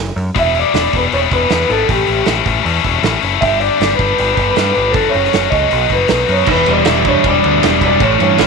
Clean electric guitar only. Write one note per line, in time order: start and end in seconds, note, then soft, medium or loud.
0.39 0.57 E5 medium
0.59 0.96 D5 loud
0.97 1.02 B4 medium
1.14 1.19 C#5 medium
1.33 1.72 B4 medium
1.70 1.88 A4 medium
1.90 2.25 G4 medium
3.41 3.59 E5 medium
3.60 3.95 D5 loud
3.95 4.32 B4 medium
4.33 4.50 B4 medium
4.51 4.71 B4 medium
4.72 4.94 B4 medium
4.91 5.13 A4 medium
5.10 5.50 C#5 medium
5.50 6.24 D#5 medium
5.93 6.31 B4 medium
6.32 6.50 C#5 medium
6.51 6.71 B4 medium
6.71 7.08 D5 medium
7.08 7.26 C#5 medium
7.28 7.79 D5 loud
7.86 8.03 D5 loud
8.03 8.20 C#5 loud
8.21 8.47 C#5 loud